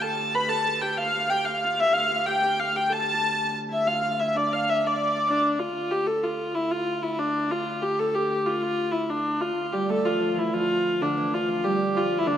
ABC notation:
X:1
M:6/8
L:1/16
Q:3/8=126
K:Ddor
V:1 name="Hurdy-gurdy"
a4 b2 a4 g2 | f4 g2 f4 e2 | f4 g2 g2 f2 g2 | a8 z2 e2 |
f2 f2 e2 d2 f2 e2 | d6 D4 F2- | F2 G2 A2 F4 E2 | F4 E2 D4 F2- |
F2 G2 A2 G2 G2 F2 | F4 E2 D4 F2- | F2 G2 A2 F4 E2 | F6 D4 F2 |
F2 G4 F3 E D2 |]
V:2 name="Harp"
A4 B2 A2 A2 G2 | F2 F2 G2 F2 F2 E2 | F3/2 G/2 F2 G2 G4 G2 | A8 z2 E2 |
F2 F2 E2 D2 F2 E2 | D8 z4 | z12 | z12 |
z12 | z12 | z2 G,2 A,2 F,2 F,2 E,2 | F,6 D,2 E,4 |
F,2 G,4 F,3 E, D,2 |]
V:3 name="Viola da gamba" clef=bass
D,,12- | D,,12 | D,,12- | D,,12- |
D,,12- | D,,12 | D,,12- | D,,12- |
D,,12- | D,,12 | D,,12- | D,,12- |
D,,12 |]